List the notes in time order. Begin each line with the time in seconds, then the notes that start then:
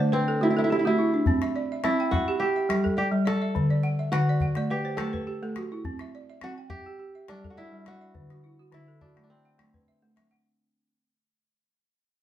Already playing: D4 F#4 D5
0.00 A3 C5
0.12 C4 B4
0.28 A4
0.41 A3 E4 F#4
0.50 E4
0.57 E4 A4
0.64 E4
0.70 E4 G4
0.79 E4
0.85 A3 E4 F#4
0.99 E4
1.14 D4
1.26 C4, calabash thump
1.42 E5, calabash click
1.56 D5
1.72 E5
1.84 C4 E4, calabash click
2.00 G5
2.11 F#4 E5, calabash thump
2.28 G4
2.40 G4
2.56 E5
2.69 G3, calabash click
2.84 A4, calabash thump
2.97 G4 D5
3.12 G3
3.25 A4 D5, calabash click
3.42 E5
3.55 D3, calabash thump
3.70 D5
3.83 F#5
3.99 E5
4.12 D3 F#4 F#5, calabash click
4.29 D5
4.40 F#5, calabash thump
4.55 A3 D5, calabash click
4.70 G4 B4
4.85 C5
4.97 A3 A4, calabash click
5.13 B4, calabash thump
5.27 G4
5.43 A3 A4
5.56 F#4, calabash click
5.72 E4
5.85 C4, calabash thump
5.99 E5, calabash click
6.15 D5
6.30 E5
6.41 C4 F#4, calabash click
6.58 G5
6.70 G4 E5, calabash thump
6.86 G4
6.99 G4
7.15 E5
7.28 G3 D4, calabash click
7.44 A4, calabash thump
7.50 F#4
7.57 E4 D5
7.72 G3
7.86 F#4 D5, calabash click
8.01 E5
8.15 D3, calabash thump
8.30 F#4, calabash click
8.44 E4
8.59 F#4
8.72 D3 E4, calabash click
8.88 A4
9.01 D4 F#4, calabash thump
9.16 A3, calabash click
9.23 D4
9.30 C4
9.45 F#5
9.58 A3, calabash click
9.74 B4, calabash thump
9.88 E5
10.02 A3
10.16 E5, calabash click
10.31 F#5, calabash click